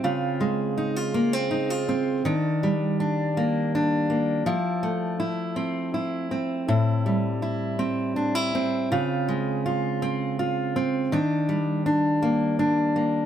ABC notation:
X:1
M:6/8
L:1/16
Q:3/8=54
K:Aphr
V:1 name="Steel-string acoustic guitar"
[_D,F]2 _A,2 _E F B, C E F C2 | [_E,D]2 G,2 D2 B,2 D2 B,2 | [F,E]2 A,2 E2 C2 E2 C2 | [A,,E]2 G,2 E2 C2 D E C2 |
[_D,F]2 _A,2 F2 C2 F2 C2 | [_E,D]2 G,2 D2 B,2 D2 B,2 |]